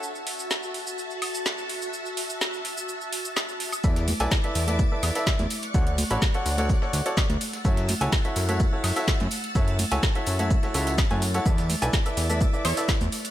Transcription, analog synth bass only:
X:1
M:4/4
L:1/16
Q:1/4=126
K:F#m
V:1 name="Analog synth bass" clef=bass
z16 | z16 | E,,2 z B,,, z2 E,,2 z2 E,, z2 E,, z2 | D,,2 z A,,, z2 D,,2 z2 D,, z2 D,, z2 |
F,,2 z C,, z2 F,,2 z2 F,, z2 F,, z2 | F,,2 z C,, z2 F,,2 z2 C,,2 z F,,2 z | E,,2 z B,,, z2 E,,2 z2 E,, z2 E,, z2 |]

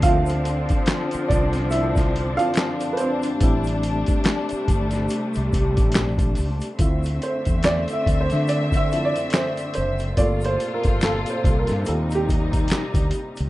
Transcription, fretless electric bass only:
X:1
M:4/4
L:1/16
Q:"Swing 16ths" 1/4=71
K:Dm
V:1 name="Fretless electric bass" clef=bass
D,,3 z3 C,,4- C,, z4 z | A,,,3 z3 G,,,2 z C,, C,, A,,, B,,,2 ^C,, z | D,,2 z E,,2 z D,, D,4 z3 ^F,,,2 | G,,,2 z G,,,2 z C,, G,, _E,,4 z D,, z ^C,, |]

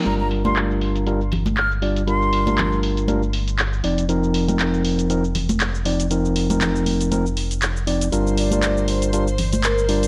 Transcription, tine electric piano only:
X:1
M:4/4
L:1/16
Q:"Swing 16ths" 1/4=119
K:Gm
V:1 name="Tine electric piano"
[G,DFB]3 [G,DFB]4- [G,DFB] [G,DFB] z4 z [G,DFd] z | [G,DFB]3 [G,DFB]4- [G,DFB] [G,DFB] z4 z [F,CEd] z | [F,CEB]3 [F,CEB]4- [F,CEB] [F,CEB] z4 z [F,CEd] z | [F,CEB]3 [F,CEB]4- [F,CEB] [F,CEB] z4 z [F,CEd] z |
[G,DFB]3 [G,DFB]4- [G,DFB] [G,DFB] z4 z [G,DFd] z |]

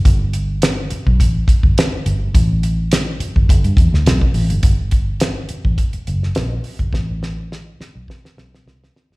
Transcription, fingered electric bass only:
X:1
M:4/4
L:1/16
Q:"Swing 16ths" 1/4=105
K:G
V:1 name="Fingered electric bass" clef=bass
G,,,6 z B,,, A,,,2 z G,,, z2 G,,,2 | A,,,6 z G,,, G,,, G,, E,, D,, B,,, z A,,, G,,, | G,,,6 z A,,, z2 F,,,2 _B,,,2 z G,,, | A,,,6 z B,,, z2 B,,,2 C,,2 z G,,, |]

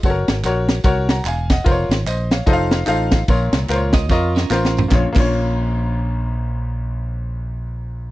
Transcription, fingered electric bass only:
X:1
M:4/4
L:1/8
Q:"Swing" 1/4=148
K:Bbm
V:1 name="Fingered electric bass" clef=bass
G,,, A,,, B,,,2 C,,2 =E,,,2 | F,,, A,,, B,,,2 F,,,2 =A,,,2 | B,,, C,, D,,2 F,,2 =A,,,2 | B,,, B,,,6- B,,,- |
B,,,8 |]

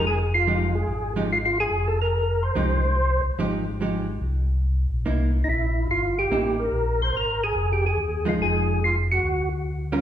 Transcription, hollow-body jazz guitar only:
X:1
M:4/4
L:1/8
Q:"Swing" 1/4=144
K:Fm
V:1 name="Hollow-body jazz guitar"
z2 [F,A,EG] z2 [F,A,EG] z2 | z4 [F,A,EG] z3 | [F,A,EG] z [F,A,EG] z4 z | [B,^D=E] z4 z [B,DE] z |
z6 z [F,A,E]- | [F,A,E]2 z4 z [G,^CF^A] |]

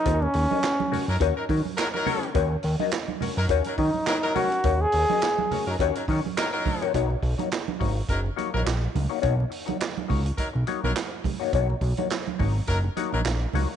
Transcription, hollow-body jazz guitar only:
X:1
M:4/4
L:1/16
Q:"Swing 16ths" 1/4=104
K:Cblyd
V:1 name="Hollow-body jazz guitar"
[DGBd] z2 [DGBe] z2 [DGBd] z [DGBd] z [DGBd] z3 [DGBd] z | [DGBd] z2 [DGBe] z2 [DGBd] z [DGBd] z [DGBd] z3 [DGBd] z | [DGBd] z2 [DGBe] z2 [DGBd] z [DGBd] z [DGBd] z4 [DGBd] | [^A,^D^F^c] z2 [A,DFc] z2 [A,DFc] z3 [A,DFc] z4 [A,DFc] |
[^A,^D^F^c] z2 [A,DFc] z2 [A,DFc] z3 [A,DFc] z4 [A,DFc] | [^A,^D^F^c] z2 [A,DFc] z2 [A,DFc] z3 [A,DFc] z3 [A,DFc] z |]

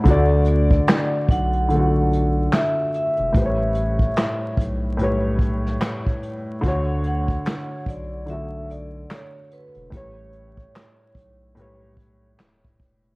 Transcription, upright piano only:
X:1
M:4/4
L:1/8
Q:"Swing 16ths" 1/4=73
K:D
V:1 name="Upright piano"
[D,A,Fd]3 z [D,A,=F^FA]3 z | [A,,G,B=c^c]3 z [A,,G,Bc]3 z | [D,A,Fc]3 z [D,A,FA]3 z | [A,,G,Bc]3 z [A,,G,Bc]3 z |]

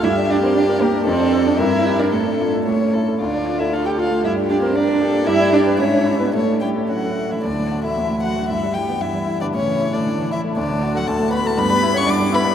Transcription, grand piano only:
X:1
M:2/4
L:1/16
Q:1/4=116
K:Dm
V:1 name="Grand piano"
G,, D G B D B G B, | F,, D A D G,, E G B | A,, D F A A,, ^C E A | D,, D F A D A F A, |
G,, D G B D B G B, | [K:D] G,, D G B ^G,, D E B | A,, C E A C A E A, | D,, A,, F A, D,, A,, F A, |
G,, G, E B, G,, G, E B, | A,, E, E A, A,, E, E A, | D,, A,, F A, D,, A,, F A, | G,, G, E B, G,, G, E B, |]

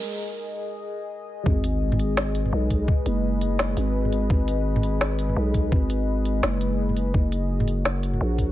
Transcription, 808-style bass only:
X:1
M:4/4
L:1/8
Q:"Swing 16ths" 1/4=169
K:G#m
V:1 name="808-style bass" clef=bass
z8 | G,,,6 B,,,2 | z F,,,4 G,,,3 | G,,,6 B,,,2 |
G,,,4 F,,,4 | F,,,6 A,,,2 |]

